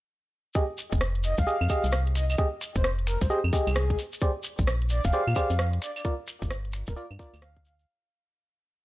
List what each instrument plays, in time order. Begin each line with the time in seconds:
0.54 fm electric piano G4 G#4 D#5, kick, shekere
0.78 open hi-hat, shekere
0.92 fm bass F1, kick, closed hi-hat, shekere
1.01 cross-stick, shekere
1.15 closed hi-hat
1.24 soft synth lead D#5, open hi-hat, shekere
1.38 fm bass C2, soft synth lead F5, kick, closed hi-hat, shekere
1.47 fm electric piano G4 G#4 D#5, shekere
1.61 fm bass F2, claves
1.69 fm electric piano G4 G#4 D#5, kick, open hi-hat, claves, shekere
1.84 fm bass C2, closed hi-hat, shekere
1.92 cross-stick, shekere
2.07 closed hi-hat
2.15 soft synth lead D#5, finger snap, open hi-hat, shekere
2.30 soft synth lead D#5, closed hi-hat, claves, shekere
2.38 fm electric piano G4 G#4 D#5, kick
2.61 finger snap, open hi-hat, shekere
2.75 fm bass F1, soft synth lead C5, kick, closed hi-hat, shekere
2.84 cross-stick, shekere
2.99 closed hi-hat
3.07 soft synth lead A#4, finger snap, open hi-hat, shekere
3.21 fm bass C2, soft synth lead C5, kick, closed hi-hat, shekere
3.30 fm electric piano G4 G#4 D#5, soft synth lead C5, shekere
3.44 fm bass F2, claves
3.53 fm electric piano G4 G#4 D#5, kick, open hi-hat, shekere
3.67 fm bass C2, soft synth lead G#4, closed hi-hat, claves, shekere
3.75 cross-stick, shekere
3.90 kick, closed hi-hat
3.99 open hi-hat, shekere
4.13 closed hi-hat, shekere
4.21 fm electric piano G4 G#4 C5 D5, kick, shekere
4.43 open hi-hat, shekere
4.58 fm bass A#1, kick, closed hi-hat, shekere
4.67 cross-stick, shekere
4.82 closed hi-hat
4.89 soft synth lead D5, open hi-hat, shekere
5.04 fm bass F1, soft synth lead F5, kick, closed hi-hat, shekere
5.12 fm electric piano G4 G#4 C5 D5, shekere
5.27 fm bass A#2, claves
5.36 fm electric piano G4 G#4 C5 D5, kick, open hi-hat, claves, shekere
5.50 fm bass F2, closed hi-hat, shekere
5.59 cross-stick, shekere
5.73 closed hi-hat
5.82 soft synth lead D5, finger snap, open hi-hat, shekere
5.96 soft synth lead D5, closed hi-hat, claves, shekere
6.04 fm electric piano F4 A#4 D5, kick, shekere
6.27 finger snap, open hi-hat, shekere
6.42 fm bass G1, kick, closed hi-hat, shekere
6.50 cross-stick, shekere
6.65 closed hi-hat
6.73 finger snap, open hi-hat, shekere
6.87 fm bass D1, soft synth lead A#4, kick, closed hi-hat, shekere
6.96 fm electric piano F4 A#4 D5, soft synth lead A#4, shekere
7.11 fm bass G2, claves
7.19 fm electric piano F4 A#4 D5, soft synth lead D5, kick, open hi-hat, shekere
7.34 fm bass D2, soft synth lead D5, closed hi-hat, claves, shekere
7.42 soft synth lead F5, cross-stick, shekere
7.57 kick, closed hi-hat
7.65 soft synth lead F5, open hi-hat, shekere
7.79 soft synth lead F5, closed hi-hat, shekere